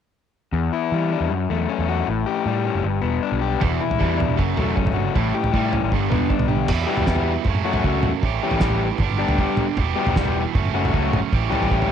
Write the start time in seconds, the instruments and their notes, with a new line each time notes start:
0.52 picked electric bass E2, overdriven electric guitar E2
0.73 overdriven electric guitar E4
0.92 picked electric bass E3, overdriven electric guitar G3
1.13 overdriven electric guitar D4
1.20 picked electric bass E2
1.30 picked electric bass F#2, overdriven electric guitar F#2
1.50 picked electric bass E2, overdriven electric guitar A3
1.69 overdriven electric guitar C#4
1.79 picked electric bass E2
1.89 overdriven electric guitar F#4
2.06 picked electric bass A1, overdriven electric guitar A2
2.26 overdriven electric guitar G4
2.46 picked electric bass A2, overdriven electric guitar G3
2.64 overdriven electric guitar C#4
2.75 picked electric bass F#1
2.84 picked electric bass G1, overdriven electric guitar G2
3.01 picked electric bass E1, overdriven electric guitar B3
3.23 overdriven electric guitar D4
3.32 picked electric bass B1
3.41 overdriven electric guitar G4
3.60 picked electric bass E1, overdriven electric guitar E2 B2 E3, kick, floor tom
3.81 overdriven electric guitar E2 B2 E4
3.91 floor tom
3.98 overdriven electric guitar E2 B2 E3 G3, picked electric bass E2, kick
4.18 overdriven electric guitar E2 B2 D4, floor tom
4.29 picked electric bass E1
4.37 picked electric bass F#1, overdriven electric guitar F#2 C#3 F#3, kick
4.56 picked electric bass E1, overdriven electric guitar F#2 C#3 F#3 A3, floor tom
4.76 overdriven electric guitar F#2 C#3 C#4, kick
4.85 picked electric bass G1, floor tom
4.94 overdriven electric guitar F#2 C#3 F#4
5.13 picked electric bass A1, overdriven electric guitar A2 E3 G3, kick, floor tom
5.34 overdriven electric guitar A2 E3 G4
5.44 floor tom
5.53 picked electric bass A2, overdriven electric guitar A2 E3 G3, kick
5.71 overdriven electric guitar A2 E3 C#4, floor tom
5.82 picked electric bass A1
5.91 picked electric bass G1, overdriven electric guitar G2 D3 G3, kick
6.10 picked electric bass E1, overdriven electric guitar G2 D3 G3 B3, floor tom, mid tom
6.29 overdriven electric guitar G2 D3 D4, kick
6.39 picked electric bass B1, floor tom
6.48 overdriven electric guitar G2 D3 G4, mid tom
6.68 overdriven electric guitar E2 B2 E3 G3 B3 E4, picked electric bass E2, kick, floor tom, crash
6.87 overdriven electric guitar E3 G3 B3 G4
6.97 picked electric bass E2, floor tom
7.06 overdriven electric guitar E3 G3 B3 G4, kick, snare
7.16 floor tom
7.45 picked electric bass F#2, overdriven electric guitar F#2 C#3 F#3 A3 C#4, kick, floor tom
7.49 overdriven electric guitar F#4
7.55 mid tom
7.64 picked electric bass F#2, overdriven electric guitar F#3 A3 C#4 F#4
7.73 floor tom
7.84 picked electric bass C#2, overdriven electric guitar F#3 A3 C#4 F#4, kick
8.03 picked electric bass E2, floor tom, mid tom
8.22 picked electric bass A1, overdriven electric guitar A2 E3 G3 C#4 G4, kick, floor tom
8.43 overdriven electric guitar E3 G3 C#4 G4
8.51 picked electric bass A1, floor tom
8.60 overdriven electric guitar E3 G3 C#4 G4, kick, snare
8.70 floor tom
8.98 picked electric bass G1, overdriven electric guitar G2 D3 G3 B3, kick, floor tom
9.03 overdriven electric guitar D4 G4
9.10 mid tom
9.18 overdriven electric guitar G3 B3 D4 G4
9.28 picked electric bass D2, floor tom
9.38 overdriven electric guitar G3 B3 D4 G4, kick
9.57 floor tom, mid tom
9.77 picked electric bass E1, overdriven electric guitar E2 B2 E3 G3 B3 G4, kick, floor tom
9.96 overdriven electric guitar E3 G3 B3 G4
10.07 picked electric bass E1, floor tom
10.16 overdriven electric guitar E3 G3 B3 G4, kick, snare
10.25 floor tom
10.55 picked electric bass F#1, overdriven electric guitar F#2 C#3 F#3 A3 C#4 F#4, kick, floor tom
10.65 mid tom
10.73 picked electric bass F#1, overdriven electric guitar F#3 A3 C#4 F#4
10.85 floor tom
10.93 picked electric bass C#2, overdriven electric guitar F#3 A3 C#4 F#4, kick
11.12 picked electric bass G1, floor tom, mid tom
11.32 picked electric bass A1, overdriven electric guitar A2 E3 G3 C#4 G4, kick, floor tom
11.50 overdriven electric guitar E3 G3 C#4 G4, floor tom
11.60 picked electric bass A1, floor tom
11.71 overdriven electric guitar E3 G3 C#4 G4, kick
11.82 floor tom